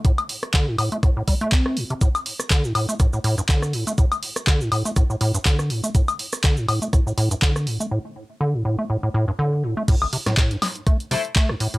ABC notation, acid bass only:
X:1
M:4/4
L:1/16
Q:"Swing 16ths" 1/4=122
K:Am
V:1 name="Acid bass" clef=bass
A,, z3 D, A,, A,, A, A,, A,, G, A, C2 A,, C, | A,, z3 D, A,, A,, A, A,, A,, A,, G,, D,2 A,, A, | A,, z3 D, A,, A,, A, A,, A,, A,, G,, D,2 A,, A, | A,, z3 D, A,, A,, A, A,, A,, A,, G,, D,2 A,, A, |
A,, z3 D, A,, A,, A, A,, A,, A,, G,, D,2 A,, A, | A,, A,,, C, A,, A,, G,, z2 A, z C, z A, G,, A,, A,, |]